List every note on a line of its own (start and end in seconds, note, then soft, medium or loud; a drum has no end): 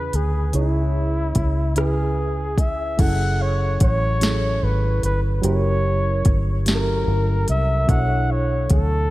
0.00 0.52 C#3 medium
0.00 0.53 C#4 medium
0.00 0.54 E4 medium
0.00 0.54 G#4 medium
0.00 0.17 B4 medium
0.00 1.78 B4 medium
0.13 0.50 D2 medium
0.13 0.55 G#4 medium
0.13 closed hi-hat medium
0.52 1.32 C#2 medium
0.52 1.46 C#3 medium
0.52 1.46 C#4 medium
0.52 1.47 E4 medium
0.52 1.73 E4 medium
0.52 1.47 G#4 medium
0.52 1.47 C#5 medium
0.52 closed hi-hat medium
1.35 2.95 C#2 medium
1.35 kick medium
1.35 closed hi-hat medium
1.76 2.69 C#3 medium
1.76 2.69 C#4 medium
1.76 2.69 E4 medium
1.76 2.61 G#4 medium
1.76 2.70 G#4 medium
1.76 2.70 B4 medium
1.76 cross-stick loud
1.76 closed hi-hat medium
2.58 3.02 E5 medium
2.58 kick medium
2.58 closed hi-hat medium
2.97 3.77 F#1 loud
2.97 3.91 F#3 medium
2.97 3.91 C#4 medium
2.97 3.91 E4 medium
2.97 3.92 G#4 medium
2.97 3.92 A4 medium
2.97 3.43 F#5 loud
2.97 kick loud
2.97 closed hi-hat medium
2.97 crash medium
3.42 3.82 C#5 medium
3.80 4.59 A1 medium
3.80 4.65 C#5 loud
3.80 kick loud
3.80 closed hi-hat medium
4.20 5.13 F#3 medium
4.20 5.14 C#4 medium
4.20 5.14 E4 medium
4.20 5.14 G#4 medium
4.20 5.15 A4 medium
4.20 snare loud
4.20 closed hi-hat medium
4.63 4.99 G#1 medium
4.63 5.04 B4 medium
5.03 5.40 G1 medium
5.03 5.21 B4 medium
5.03 closed hi-hat medium
5.42 6.22 F#1 loud
5.42 6.35 F#3 medium
5.42 6.36 C#4 medium
5.42 6.36 E4 medium
5.42 6.36 G4 medium
5.42 6.37 A#4 medium
5.42 6.36 C#5 loud
5.42 closed hi-hat medium
6.25 7.03 G1 medium
6.25 kick loud
6.25 closed hi-hat medium
6.66 7.59 F#3 medium
6.66 7.59 C#4 medium
6.66 7.59 E4 medium
6.66 7.60 G4 medium
6.66 6.74 A4 medium
6.66 7.45 A#4 medium
6.66 snare loud
6.66 closed hi-hat medium
6.75 7.63 A#4 medium
7.08 7.44 G1 loud
7.48 7.85 C2 medium
7.48 7.92 E5 loud
7.48 closed hi-hat medium
7.87 8.67 B1 loud
7.87 8.80 B2 medium
7.87 8.81 F#3 medium
7.87 8.81 D4 medium
7.87 8.81 E4 medium
7.87 8.82 A4 medium
7.87 8.82 C#5 medium
7.87 8.33 F#5 loud
7.87 kick loud
7.87 closed hi-hat medium
8.31 8.71 C#5 medium
8.70 9.10 D2 loud
8.70 9.10 A4 loud
8.70 kick medium
8.70 closed hi-hat medium